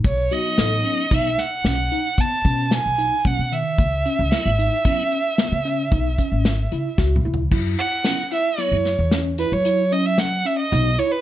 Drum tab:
CC |------------------------------------------|------------------------------------------|x-----------------------------------------|
HH |x--x--x--x--x--x--x--x--x--x--x--x--x--x--|x--x--x--x--x--x--x--x--x--x--x--x--------|---x--x--x--x--x--x--x--x--x--x--x--x--x--|
SD |------o--------o--o-----------o-----------|------o-----------o-----------o-----o-----|------o--------o--o-----------o-----------|
T2 |------------------------------------------|--------------------------------------o---|------------------------------------------|
FT |------------------------------------------|----------------------------------------o-|------------------------------------------|
BD |o-----------o-----------o--o--------o-----|o-----------o-----------o--o--------o-----|o-----------------------------------------|